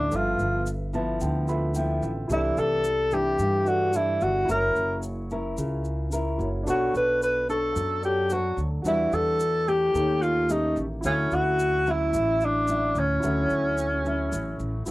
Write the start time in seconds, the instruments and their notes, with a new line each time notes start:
Already playing: tenor saxophone D4, grand piano F#4 A4 E5
0.11 upright bass G1, nylon-string guitar G2 F3 B3, grand piano A4 B4, shaker
0.16 tenor saxophone F4, grand piano E5
0.39 upright bass G1, shaker
0.66 shaker
0.93 nylon-string guitar F3 B3 E4, grand piano A5, shaker
1.20 upright bass D2, nylon-string guitar D3, grand piano G5, shaker
1.47 grand piano F4 A4 B4 E5 B5, shaker
1.75 nylon-string guitar F3 B3 E4, grand piano G5, shaker
2.02 upright bass A1, grand piano E5, shaker
2.28 upright bass C2, nylon-string guitar C3 E3 A3 D4, grand piano E4 G4 A4, shaker
2.32 tenor saxophone E4, grand piano D5
2.57 upright bass C2, tenor saxophone A4, shaker
2.84 shaker
3.11 nylon-string guitar E3 A3 D4, tenor saxophone G4, shaker
3.39 upright bass G2, nylon-string guitar G2, shaker
3.65 grand piano E4 G4 A4 D5, tenor saxophone F#4, shaker
3.93 nylon-string guitar E3 A3 D4, tenor saxophone E4, shaker
4.21 upright bass G1, tenor saxophone F#4, shaker
4.45 upright bass F#1, nylon-string guitar F#3 C#4 A#4, grand piano E4 F#4, shaker
4.50 nylon-string guitar E4, grand piano A#4 C#5, tenor saxophone A#4
4.76 upright bass F#1, shaker
5.03 shaker
5.30 nylon-string guitar C#4 E4 A#4, shaker
5.57 upright bass C#2, nylon-string guitar C#3, shaker
5.85 shaker
6.12 nylon-string guitar C#4 E4 A#4, shaker
6.38 upright bass F#1, grand piano E4 F#4 A#4 C#5, shaker
6.63 upright bass B1, nylon-string guitar B3 D4 A4, grand piano D4 F#4, shaker
6.67 tenor saxophone F#4, grand piano A4 C#5, nylon-string guitar C#5
6.94 upright bass B1, tenor saxophone B4, shaker
7.22 tenor saxophone B4, shaker
7.49 nylon-string guitar D4 A4 C#5, tenor saxophone A4, shaker
7.76 upright bass F#2, nylon-string guitar F#3, shaker
8.02 grand piano D4 F#4 A4 C#5, tenor saxophone G4, shaker
8.30 nylon-string guitar D4 A4 C#5, tenor saxophone F#4, shaker
8.57 upright bass D2, shaker
8.82 upright bass E2, nylon-string guitar E3 G3 D4 F#4, grand piano F#4, shaker
8.86 tenor saxophone E4, grand piano B4 D5
9.12 upright bass E2, tenor saxophone A4, shaker
9.40 shaker
9.67 nylon-string guitar A3 C#4 G4, tenor saxophone G4, shaker
9.91 upright bass D#2, nylon-string guitar D#3, grand piano G4 A4, shaker
9.95 grand piano A#3 C#5
10.22 tenor saxophone F4, shaker
10.49 nylon-string guitar A3 C#4 G4, tenor saxophone D#4, shaker
10.76 upright bass A1, shaker
11.01 upright bass D2, nylon-string guitar D3 F#3 C#4, grand piano E4 F#4 A4, shaker
11.05 tenor saxophone C#4, nylon-string guitar E4, grand piano C#5
11.31 upright bass D2, tenor saxophone F#4, shaker
11.59 shaker
11.86 nylon-string guitar F#3 C#4 E4, shaker
11.91 tenor saxophone E4
12.13 upright bass A1, nylon-string guitar A2, shaker
12.41 shaker
12.45 tenor saxophone D4
12.68 nylon-string guitar F#3 C#4 E4, shaker
12.95 upright bass D2, tenor saxophone C#4, shaker
13.20 upright bass D2, nylon-string guitar D3 F#3, grand piano E4 F#4, shaker
13.24 nylon-string guitar C#4 E4, grand piano A4 C#5
13.50 upright bass D2, shaker
13.78 shaker
14.05 nylon-string guitar F#3 C#4 E4, shaker
14.32 upright bass A1, nylon-string guitar A2, shaker
14.60 upright bass A1, shaker
14.86 upright bass B1, nylon-string guitar F#3 C#4, grand piano E4 F#4, shaker